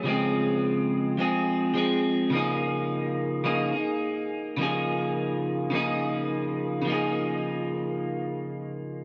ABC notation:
X:1
M:4/4
L:1/8
Q:"Swing 16ths" 1/4=106
K:Db
V:1 name="Clean electric guitar"
[D,F,A,CA]4 [F,A,CA]2 [F,A,CA]2 | [D,F,B,EA]4 [D,F,B,EA] [B,EA]3 | [D,F,B,EA]4 [D,F,B,EA]4 | [D,F,B,EA]8 |]